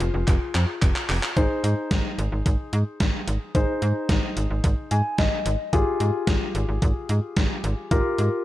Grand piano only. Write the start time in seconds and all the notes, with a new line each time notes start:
Already playing: F4 G#4 C5
1.37 D#4 G#4 C5
3.55 D#4 G#4 C5
4.91 G#5
5.18 D#5
5.73 F4 G4 G#4
7.91 F4 G4 A#4